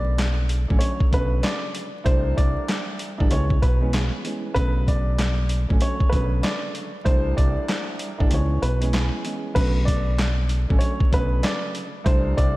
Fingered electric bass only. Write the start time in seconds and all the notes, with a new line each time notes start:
Already playing: B1
0.70 A1
1.13 B1
2.06 C2
2.38 C2
3.20 A1
3.31 C#2
3.63 B1
4.56 B1
5.70 A1
6.13 B1
7.06 C2
7.38 C2
8.20 A1
8.31 C#2
8.62 B1
9.56 B1
10.70 A1
11.13 B1
12.06 C2
12.38 C2